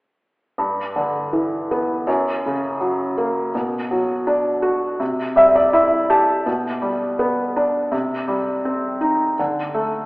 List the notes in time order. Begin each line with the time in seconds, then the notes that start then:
0.58 G2
0.96 D3
1.33 E3
1.71 B3
2.07 F#2
2.46 C#3
2.81 F#3
3.18 A#3
3.55 B2
3.91 F#3
4.27 D4
4.62 F#4
5.00 C3
5.36 G3 E5
5.55 D5
5.73 E4 E5
6.10 G4 A5
6.46 B2
6.82 G3
7.19 B3
7.56 D4
7.92 C3
8.28 G3
8.65 C4
9.01 D#4
9.39 D3
9.74 A3